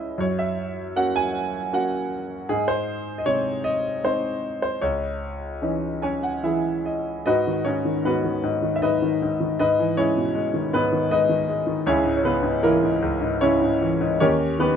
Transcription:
Already playing: C#2 G#3 C#4 E4 C#5 D#5 E5
0.18 F#2 C#5
0.39 E5
0.96 A#3 C#4 F#4 F#5
1.16 G#5
1.73 A#3 C#4 F#4 F#5
2.49 G#2 G#4
2.68 C5
3.18 D#5
3.25 C3 G#3 D#4 C#5
3.64 D#5
4.04 G#3 C4 D#4 C5
4.62 C5
4.81 C#2 C#5
5.62 E3 C#4 D#4
6.02 C#4 C#5 G#5
6.23 F#5
6.43 E3 C#4 E4 G#4 E5
6.85 D#5
7.26 G#2 D#4 F#4 B4 D#5
7.47 D#3
7.64 G#2 C#4 C#5
7.85 D#3
8.05 G#2 B3 F#4 B4
8.24 D#3
8.43 G#2
8.62 D#3
8.76 E5
8.82 G#2 D#4 B4 D#5
9.02 D#3
9.22 G#2
9.40 D#3
9.59 G#2 D#4 B4 D#5
9.79 E3
9.97 G#3 C#4 E4 C#5
10.17 B2
10.35 G#3
10.54 D#3
10.73 G#2 B3 B4
10.92 D#3
11.11 G#3 D#4 B4 D#5
11.29 D#3
11.48 G#3
11.67 D#3
11.86 C#2 C#4 E4 G#4 C#5
12.05 G#2
12.17 C#5
12.23 C#3 B3 B4
12.43 G#2
12.63 E3 A#3 E4 A#4
12.83 G#2
13.02 C#2
13.21 G#2
13.41 C#3 C#4 E4 C#5
13.62 G#2
13.81 E3
14.01 G#2
14.20 D#2 C#4 G4 A#4 C#5
14.59 D#3 B3 G4 B4

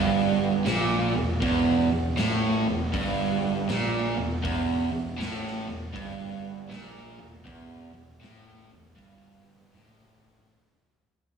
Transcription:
Already playing: G1 G2
0.65 A#1 A#2, snare, open hi-hat
1.15 E1 E2
1.41 E1 E2, kick, open hi-hat
1.92 E1 E2
2.17 A1 A2, snare, open hi-hat
2.67 E1 E2
2.93 G1 G2, kick, open hi-hat
3.69 A#1 A#2, snare, open hi-hat
4.17 E1 E2
4.43 E1 E2, kick, open hi-hat
4.92 E1 E2
5.17 A1 A2, open hi-hat
5.22 snare
5.47 snare
5.68 E1 E2
5.93 G1 G2, kick, open hi-hat
6.69 A#1 A#2, snare, open hi-hat
7.19 E1 E2
7.45 E1 E2, kick, open hi-hat
7.94 E1 E2
8.21 A1 A2, snare, open hi-hat
8.71 E1 E2
8.96 G1 G2, kick, open hi-hat
9.73 A1 A2, snare, open hi-hat
10.24 kick
10.37 floor tom

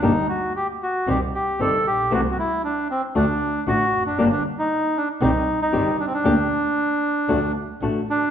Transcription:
0.02 G1 D3 G3 A#3 D4 D#4 G4
0.29 F#4
0.56 G4
0.83 F#4
1.07 C2 C3 D#3 G3 C4 G4
1.35 G4
1.59 G1 C3 D#3 G3 C4 G4 A4
1.85 A#1 G4
2.11 C2 C3 E3 A3 C4 E4 F#4
2.32 F#4
2.39 E4
2.64 D4
2.91 C4
3.15 D2 D3 A3 D4 F#4
3.67 A1 D3 A3 D4 F#4
3.93 F1
4.06 D4
4.18 G1 D3 G3 A#3 D4 G4
4.32 D4
4.59 D#4
4.97 D4
5.21 C2 C3 D#3 G3 C4 D#4 G4
5.62 D#4
5.72 G1 C3 D#3 G3 C4 G4
6.00 D4
6.07 C4
6.14 D4
6.24 D2 D3 A#3 D4 G4
7.28 D2 D3 A3 D4 F#4
7.81 A1 D3 A3 D4 F#4
8.10 D4

